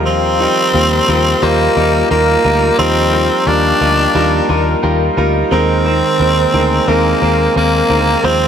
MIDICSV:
0, 0, Header, 1, 6, 480
1, 0, Start_track
1, 0, Key_signature, -3, "major"
1, 0, Tempo, 681818
1, 44, Time_signature, 4, 2, 24, 8
1, 5969, End_track
2, 0, Start_track
2, 0, Title_t, "Analog synth pad"
2, 0, Program_c, 0, 89
2, 0, Note_on_c, 0, 65, 80
2, 0, Note_on_c, 0, 70, 71
2, 0, Note_on_c, 0, 77, 70
2, 0, Note_on_c, 0, 79, 86
2, 3856, Note_off_c, 0, 65, 0
2, 3856, Note_off_c, 0, 79, 0
2, 3857, Note_off_c, 0, 77, 0
2, 3881, Note_on_c, 0, 72, 70
2, 3883, Note_on_c, 0, 63, 75
2, 3883, Note_on_c, 0, 80, 80
2, 5777, Note_off_c, 0, 70, 0
2, 5784, Note_off_c, 0, 63, 0
2, 5806, Note_on_c, 0, 65, 74
2, 5809, Note_on_c, 0, 68, 69
2, 5969, Note_off_c, 0, 65, 0
2, 5969, Note_off_c, 0, 68, 0
2, 5969, Note_off_c, 0, 72, 0
2, 5969, Note_off_c, 0, 80, 0
2, 5969, End_track
3, 0, Start_track
3, 0, Title_t, "Grand piano"
3, 0, Program_c, 1, 0
3, 0, Control_c, 1, 64, 127
3, 0, Note_on_c, 1, 51, 78
3, 0, Note_on_c, 1, 55, 98
3, 0, Note_on_c, 1, 63, 87
3, 0, Note_on_c, 1, 65, 87
3, 0, Note_on_c, 1, 70, 108
3, 185, Note_off_c, 1, 55, 0
3, 186, Note_off_c, 1, 63, 0
3, 187, Note_off_c, 1, 65, 0
3, 189, Note_off_c, 1, 70, 0
3, 279, Note_on_c, 1, 55, 72
3, 282, Note_on_c, 1, 63, 70
3, 285, Note_on_c, 1, 65, 70
3, 287, Note_on_c, 1, 70, 80
3, 442, Note_off_c, 1, 55, 0
3, 443, Note_off_c, 1, 63, 0
3, 445, Note_off_c, 1, 65, 0
3, 446, Note_off_c, 1, 70, 0
3, 495, Note_off_c, 1, 51, 0
3, 517, Note_on_c, 1, 55, 76
3, 520, Note_on_c, 1, 63, 74
3, 523, Note_on_c, 1, 65, 68
3, 525, Note_on_c, 1, 70, 86
3, 681, Note_off_c, 1, 55, 0
3, 682, Note_off_c, 1, 63, 0
3, 684, Note_off_c, 1, 65, 0
3, 685, Note_off_c, 1, 70, 0
3, 759, Note_on_c, 1, 55, 83
3, 761, Note_on_c, 1, 63, 83
3, 764, Note_on_c, 1, 65, 78
3, 765, Note_on_c, 1, 70, 90
3, 922, Note_off_c, 1, 55, 0
3, 923, Note_off_c, 1, 63, 0
3, 924, Note_off_c, 1, 65, 0
3, 925, Note_off_c, 1, 70, 0
3, 997, Note_on_c, 1, 55, 103
3, 1000, Note_on_c, 1, 63, 90
3, 1002, Note_on_c, 1, 65, 92
3, 1006, Note_on_c, 1, 72, 116
3, 1161, Note_off_c, 1, 55, 0
3, 1162, Note_off_c, 1, 63, 0
3, 1163, Note_off_c, 1, 65, 0
3, 1165, Note_off_c, 1, 72, 0
3, 1239, Note_on_c, 1, 55, 79
3, 1242, Note_on_c, 1, 63, 69
3, 1245, Note_on_c, 1, 65, 70
3, 1248, Note_on_c, 1, 70, 82
3, 1402, Note_off_c, 1, 55, 0
3, 1404, Note_off_c, 1, 63, 0
3, 1405, Note_off_c, 1, 65, 0
3, 1406, Note_off_c, 1, 70, 0
3, 1477, Note_on_c, 1, 55, 73
3, 1481, Note_on_c, 1, 63, 66
3, 1484, Note_on_c, 1, 65, 69
3, 1486, Note_on_c, 1, 70, 79
3, 1641, Note_off_c, 1, 55, 0
3, 1643, Note_off_c, 1, 63, 0
3, 1644, Note_off_c, 1, 65, 0
3, 1646, Note_off_c, 1, 70, 0
3, 1719, Note_on_c, 1, 55, 77
3, 1722, Note_on_c, 1, 63, 66
3, 1724, Note_on_c, 1, 65, 66
3, 1727, Note_on_c, 1, 70, 87
3, 1882, Note_off_c, 1, 55, 0
3, 1884, Note_off_c, 1, 65, 0
3, 1886, Note_off_c, 1, 70, 0
3, 1951, Note_off_c, 1, 63, 0
3, 1958, Note_on_c, 1, 55, 100
3, 1961, Note_on_c, 1, 63, 92
3, 1963, Note_on_c, 1, 65, 91
3, 1966, Note_on_c, 1, 70, 112
3, 2122, Note_off_c, 1, 55, 0
3, 2123, Note_off_c, 1, 63, 0
3, 2124, Note_off_c, 1, 65, 0
3, 2125, Note_off_c, 1, 70, 0
3, 2199, Note_on_c, 1, 55, 71
3, 2202, Note_on_c, 1, 63, 67
3, 2205, Note_on_c, 1, 65, 65
3, 2208, Note_on_c, 1, 70, 77
3, 2362, Note_off_c, 1, 55, 0
3, 2363, Note_off_c, 1, 63, 0
3, 2365, Note_off_c, 1, 65, 0
3, 2366, Note_off_c, 1, 70, 0
3, 2440, Note_on_c, 1, 55, 75
3, 2443, Note_on_c, 1, 63, 71
3, 2445, Note_on_c, 1, 65, 70
3, 2448, Note_on_c, 1, 70, 85
3, 2603, Note_off_c, 1, 55, 0
3, 2604, Note_off_c, 1, 63, 0
3, 2605, Note_off_c, 1, 65, 0
3, 2606, Note_off_c, 1, 70, 0
3, 2679, Note_on_c, 1, 55, 70
3, 2682, Note_on_c, 1, 63, 67
3, 2683, Note_on_c, 1, 65, 65
3, 2687, Note_on_c, 1, 70, 78
3, 2842, Note_off_c, 1, 55, 0
3, 2843, Note_off_c, 1, 63, 0
3, 2844, Note_off_c, 1, 65, 0
3, 2846, Note_off_c, 1, 70, 0
3, 2917, Note_on_c, 1, 55, 98
3, 2919, Note_on_c, 1, 63, 85
3, 2923, Note_on_c, 1, 65, 93
3, 2925, Note_on_c, 1, 70, 102
3, 3081, Note_off_c, 1, 55, 0
3, 3082, Note_off_c, 1, 63, 0
3, 3084, Note_off_c, 1, 65, 0
3, 3085, Note_off_c, 1, 70, 0
3, 3159, Note_on_c, 1, 55, 84
3, 3161, Note_on_c, 1, 63, 80
3, 3163, Note_on_c, 1, 65, 76
3, 3163, Note_on_c, 1, 82, 75
3, 3166, Note_on_c, 1, 70, 94
3, 3322, Note_off_c, 1, 55, 0
3, 3323, Note_off_c, 1, 63, 0
3, 3324, Note_off_c, 1, 65, 0
3, 3326, Note_off_c, 1, 70, 0
3, 3387, Note_off_c, 1, 82, 0
3, 3397, Note_on_c, 1, 55, 87
3, 3399, Note_on_c, 1, 63, 83
3, 3400, Note_on_c, 1, 79, 71
3, 3402, Note_on_c, 1, 65, 80
3, 3405, Note_on_c, 1, 70, 95
3, 3561, Note_off_c, 1, 55, 0
3, 3562, Note_off_c, 1, 63, 0
3, 3563, Note_off_c, 1, 65, 0
3, 3565, Note_off_c, 1, 70, 0
3, 3639, Note_on_c, 1, 55, 89
3, 3642, Note_on_c, 1, 63, 81
3, 3645, Note_on_c, 1, 65, 81
3, 3648, Note_on_c, 1, 70, 98
3, 3802, Note_off_c, 1, 55, 0
3, 3803, Note_off_c, 1, 63, 0
3, 3805, Note_off_c, 1, 65, 0
3, 3806, Note_off_c, 1, 70, 0
3, 3854, Note_off_c, 1, 79, 0
3, 3879, Note_on_c, 1, 56, 101
3, 3882, Note_on_c, 1, 60, 90
3, 3883, Note_on_c, 1, 51, 69
3, 3885, Note_on_c, 1, 63, 95
3, 3888, Note_on_c, 1, 70, 110
3, 3894, Control_c, 1, 64, 0
3, 4034, Control_c, 1, 64, 127
3, 4042, Note_off_c, 1, 56, 0
3, 4043, Note_off_c, 1, 60, 0
3, 4045, Note_off_c, 1, 63, 0
3, 4046, Note_off_c, 1, 70, 0
3, 4121, Note_on_c, 1, 56, 72
3, 4124, Note_on_c, 1, 60, 69
3, 4127, Note_on_c, 1, 63, 66
3, 4129, Note_on_c, 1, 70, 80
3, 4283, Note_off_c, 1, 56, 0
3, 4284, Note_off_c, 1, 60, 0
3, 4286, Note_off_c, 1, 63, 0
3, 4287, Note_off_c, 1, 70, 0
3, 4358, Note_on_c, 1, 56, 73
3, 4360, Note_on_c, 1, 60, 67
3, 4364, Note_on_c, 1, 63, 73
3, 4367, Note_on_c, 1, 70, 85
3, 4521, Note_off_c, 1, 56, 0
3, 4523, Note_off_c, 1, 60, 0
3, 4524, Note_off_c, 1, 63, 0
3, 4526, Note_off_c, 1, 70, 0
3, 4576, Note_off_c, 1, 51, 0
3, 4598, Note_on_c, 1, 56, 84
3, 4601, Note_on_c, 1, 60, 75
3, 4603, Note_on_c, 1, 63, 77
3, 4606, Note_on_c, 1, 70, 93
3, 4762, Note_off_c, 1, 56, 0
3, 4763, Note_off_c, 1, 60, 0
3, 4764, Note_off_c, 1, 63, 0
3, 4766, Note_off_c, 1, 70, 0
3, 4837, Note_on_c, 1, 56, 97
3, 4840, Note_on_c, 1, 60, 87
3, 4844, Note_on_c, 1, 63, 91
3, 4846, Note_on_c, 1, 70, 110
3, 5001, Note_off_c, 1, 56, 0
3, 5002, Note_off_c, 1, 60, 0
3, 5004, Note_off_c, 1, 63, 0
3, 5005, Note_off_c, 1, 70, 0
3, 5079, Note_on_c, 1, 56, 71
3, 5081, Note_on_c, 1, 60, 66
3, 5084, Note_on_c, 1, 63, 66
3, 5086, Note_on_c, 1, 70, 83
3, 5242, Note_off_c, 1, 56, 0
3, 5243, Note_off_c, 1, 60, 0
3, 5244, Note_off_c, 1, 63, 0
3, 5245, Note_off_c, 1, 70, 0
3, 5317, Note_on_c, 1, 56, 73
3, 5320, Note_on_c, 1, 60, 67
3, 5323, Note_on_c, 1, 63, 69
3, 5326, Note_on_c, 1, 70, 83
3, 5481, Note_off_c, 1, 56, 0
3, 5482, Note_off_c, 1, 60, 0
3, 5484, Note_off_c, 1, 63, 0
3, 5485, Note_off_c, 1, 70, 0
3, 5556, Note_on_c, 1, 56, 74
3, 5559, Note_on_c, 1, 60, 67
3, 5562, Note_on_c, 1, 63, 73
3, 5565, Note_on_c, 1, 70, 83
3, 5720, Note_off_c, 1, 56, 0
3, 5722, Note_off_c, 1, 60, 0
3, 5724, Note_off_c, 1, 63, 0
3, 5725, Note_off_c, 1, 70, 0
3, 5797, Note_on_c, 1, 56, 107
3, 5800, Note_on_c, 1, 60, 97
3, 5801, Note_on_c, 1, 51, 67
3, 5802, Note_on_c, 1, 65, 93
3, 5805, Note_on_c, 1, 72, 106
3, 5813, Control_c, 1, 64, 0
3, 5919, Control_c, 1, 64, 127
3, 5961, Note_off_c, 1, 56, 0
3, 5962, Note_off_c, 1, 60, 0
3, 5963, Note_off_c, 1, 65, 0
3, 5965, Note_off_c, 1, 72, 0
3, 5969, Note_off_c, 1, 51, 0
3, 5969, End_track
4, 0, Start_track
4, 0, Title_t, "Tenor saxophone"
4, 0, Program_c, 2, 66
4, 41, Note_on_c, 2, 60, 105
4, 1005, Note_on_c, 2, 58, 97
4, 1015, Note_off_c, 2, 60, 0
4, 1480, Note_off_c, 2, 58, 0
4, 1484, Note_on_c, 2, 58, 95
4, 1936, Note_off_c, 2, 58, 0
4, 1964, Note_on_c, 2, 60, 108
4, 2442, Note_on_c, 2, 62, 101
4, 2453, Note_off_c, 2, 60, 0
4, 3403, Note_off_c, 2, 62, 0
4, 3888, Note_on_c, 2, 60, 98
4, 4847, Note_on_c, 2, 58, 92
4, 4857, Note_off_c, 2, 60, 0
4, 5325, Note_off_c, 2, 58, 0
4, 5329, Note_on_c, 2, 58, 96
4, 5807, Note_on_c, 2, 60, 108
4, 5817, Note_off_c, 2, 58, 0
4, 5969, Note_off_c, 2, 60, 0
4, 5969, End_track
5, 0, Start_track
5, 0, Title_t, "Clean electric guitar"
5, 0, Program_c, 3, 27
5, 44, Note_on_c, 3, 53, 86
5, 284, Note_on_c, 3, 63, 62
5, 522, Note_on_c, 3, 58, 65
5, 760, Note_off_c, 3, 63, 0
5, 763, Note_on_c, 3, 63, 55
5, 1000, Note_off_c, 3, 58, 0
5, 1003, Note_on_c, 3, 58, 62
5, 1239, Note_off_c, 3, 63, 0
5, 1242, Note_on_c, 3, 63, 65
5, 1480, Note_off_c, 3, 58, 0
5, 1482, Note_on_c, 3, 58, 70
5, 1719, Note_off_c, 3, 63, 0
5, 1722, Note_on_c, 3, 63, 64
5, 1955, Note_off_c, 3, 53, 0
5, 1964, Note_on_c, 3, 53, 83
5, 2200, Note_off_c, 3, 63, 0
5, 2203, Note_on_c, 3, 63, 62
5, 2439, Note_off_c, 3, 58, 0
5, 2442, Note_on_c, 3, 58, 70
5, 2679, Note_off_c, 3, 63, 0
5, 2682, Note_on_c, 3, 63, 60
5, 2919, Note_off_c, 3, 58, 0
5, 2922, Note_on_c, 3, 58, 62
5, 3159, Note_off_c, 3, 63, 0
5, 3162, Note_on_c, 3, 63, 62
5, 3398, Note_off_c, 3, 58, 0
5, 3401, Note_on_c, 3, 58, 66
5, 3639, Note_off_c, 3, 63, 0
5, 3642, Note_on_c, 3, 63, 60
5, 3879, Note_off_c, 3, 53, 0
5, 3882, Note_on_c, 3, 51, 83
5, 4121, Note_off_c, 3, 63, 0
5, 4124, Note_on_c, 3, 60, 58
5, 4145, Note_off_c, 3, 58, 0
5, 4364, Note_on_c, 3, 58, 66
5, 4600, Note_off_c, 3, 60, 0
5, 4603, Note_on_c, 3, 60, 57
5, 4835, Note_off_c, 3, 58, 0
5, 4844, Note_on_c, 3, 58, 59
5, 5079, Note_off_c, 3, 60, 0
5, 5082, Note_on_c, 3, 60, 63
5, 5315, Note_off_c, 3, 58, 0
5, 5324, Note_on_c, 3, 58, 62
5, 5560, Note_off_c, 3, 60, 0
5, 5563, Note_on_c, 3, 60, 59
5, 5801, Note_off_c, 3, 51, 0
5, 5804, Note_on_c, 3, 53, 89
5, 5852, Note_off_c, 3, 58, 0
5, 5969, Note_off_c, 3, 53, 0
5, 5969, Note_off_c, 3, 60, 0
5, 5969, End_track
6, 0, Start_track
6, 0, Title_t, "Fingered electric bass"
6, 0, Program_c, 4, 33
6, 0, Note_on_c, 4, 39, 92
6, 322, Note_off_c, 4, 39, 0
6, 523, Note_on_c, 4, 39, 97
6, 696, Note_off_c, 4, 39, 0
6, 763, Note_on_c, 4, 39, 91
6, 936, Note_off_c, 4, 39, 0
6, 1003, Note_on_c, 4, 39, 112
6, 1176, Note_off_c, 4, 39, 0
6, 1243, Note_on_c, 4, 39, 108
6, 1416, Note_off_c, 4, 39, 0
6, 1484, Note_on_c, 4, 39, 107
6, 1657, Note_off_c, 4, 39, 0
6, 1723, Note_on_c, 4, 38, 86
6, 1896, Note_off_c, 4, 38, 0
6, 1963, Note_on_c, 4, 39, 103
6, 2309, Note_off_c, 4, 39, 0
6, 2441, Note_on_c, 4, 39, 101
6, 2615, Note_off_c, 4, 39, 0
6, 2682, Note_on_c, 4, 38, 86
6, 2856, Note_off_c, 4, 38, 0
6, 2921, Note_on_c, 4, 39, 100
6, 3095, Note_off_c, 4, 39, 0
6, 3163, Note_on_c, 4, 39, 103
6, 3336, Note_off_c, 4, 39, 0
6, 3403, Note_on_c, 4, 39, 103
6, 3576, Note_off_c, 4, 39, 0
6, 3641, Note_on_c, 4, 38, 94
6, 3815, Note_off_c, 4, 38, 0
6, 3883, Note_on_c, 4, 39, 95
6, 4229, Note_off_c, 4, 39, 0
6, 4363, Note_on_c, 4, 39, 96
6, 4536, Note_off_c, 4, 39, 0
6, 4603, Note_on_c, 4, 38, 97
6, 4776, Note_off_c, 4, 38, 0
6, 4842, Note_on_c, 4, 39, 107
6, 5016, Note_off_c, 4, 39, 0
6, 5083, Note_on_c, 4, 39, 97
6, 5256, Note_off_c, 4, 39, 0
6, 5323, Note_on_c, 4, 39, 100
6, 5496, Note_off_c, 4, 39, 0
6, 5560, Note_on_c, 4, 38, 79
6, 5734, Note_off_c, 4, 38, 0
6, 5800, Note_on_c, 4, 39, 103
6, 5969, Note_off_c, 4, 39, 0
6, 5969, End_track
0, 0, End_of_file